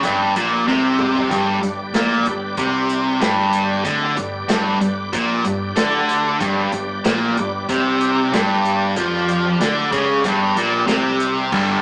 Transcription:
Already playing: tonewheel organ G4 B4 D5
0.03 fingered electric bass G1, overdriven electric guitar G2, kick, closed hi-hat
0.34 fingered electric bass A#1, overdriven electric guitar A#2, closed hi-hat
0.67 fingered electric bass C2, overdriven electric guitar C3, snare
0.99 mid tom
1.15 floor tom
1.30 fingered electric bass G1, overdriven electric guitar G2, tonewheel organ G4 B4 D5, kick, closed hi-hat
1.62 fingered electric bass G1, overdriven electric guitar G2, closed hi-hat
1.93 fingered electric bass A#1, overdriven electric guitar A#2, snare, closed hi-hat
2.11 snare
2.25 fingered electric bass G1, overdriven electric guitar G2, closed hi-hat
2.57 fingered electric bass C2, overdriven electric guitar C3, kick, closed hi-hat
2.89 closed hi-hat
3.20 fingered electric bass G1, overdriven electric guitar G2, snare, closed hi-hat
3.53 closed hi-hat
3.84 fingered electric bass D2, overdriven electric guitar D3, tonewheel organ C4 G#4 D#5, kick, closed hi-hat
4.03 tonewheel organ G4 B4 D5
4.16 fingered electric bass G1, overdriven electric guitar G2, closed hi-hat
4.47 fingered electric bass G1, overdriven electric guitar G2, snare, closed hi-hat
4.80 fingered electric bass G1, overdriven electric guitar G2, closed hi-hat
5.13 fingered electric bass A#1, overdriven electric guitar A#2, kick, closed hi-hat
5.44 fingered electric bass G1, overdriven electric guitar G2, closed hi-hat
5.76 fingered electric bass D2, overdriven electric guitar D3, snare, closed hi-hat
6.09 closed hi-hat
6.39 fingered electric bass G1, overdriven electric guitar G2, tonewheel organ G4 B4 D5, kick, closed hi-hat
6.71 fingered electric bass G1, overdriven electric guitar G2, closed hi-hat
7.04 fingered electric bass A#1, overdriven electric guitar A#2, snare, closed hi-hat
7.36 fingered electric bass G1, overdriven electric guitar G2, closed hi-hat
7.69 fingered electric bass C2, overdriven electric guitar C3, kick, closed hi-hat
8.01 closed hi-hat
8.31 fingered electric bass G1, overdriven electric guitar G2, snare, closed hi-hat
8.65 closed hi-hat
8.96 fingered electric bass F2, overdriven electric guitar F3, tonewheel organ G4 B4 D5, kick, closed hi-hat
9.28 closed hi-hat
9.60 fingered electric bass D2, overdriven electric guitar D3, snare, closed hi-hat
9.91 fingered electric bass C#2, overdriven electric guitar C#3, kick, closed hi-hat
10.24 fingered electric bass G1, overdriven electric guitar G2, kick, closed hi-hat
10.56 fingered electric bass A#1, overdriven electric guitar A#2, closed hi-hat
10.87 fingered electric bass C2, overdriven electric guitar C3, snare, closed hi-hat
11.20 closed hi-hat
11.52 fingered electric bass G1, overdriven electric guitar G2 D3, tonewheel organ B3 G4 D5, kick, crash

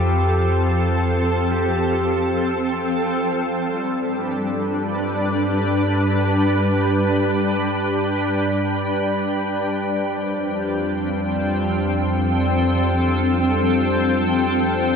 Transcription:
Already playing: synth drone F2, ambient pad F3 C4 A4 G5, pedal steel guitar G4
0.69 pedal steel guitar A4
1.51 pedal steel guitar G4
3.11 synth drone G2 G3 D4, ambient pad G3
3.65 ambient pad D4
3.76 ambient pad B4
6.01 ambient pad G5
9.51 synth drone F2, ambient pad F3
10.06 ambient pad C4
11.20 ambient pad A4

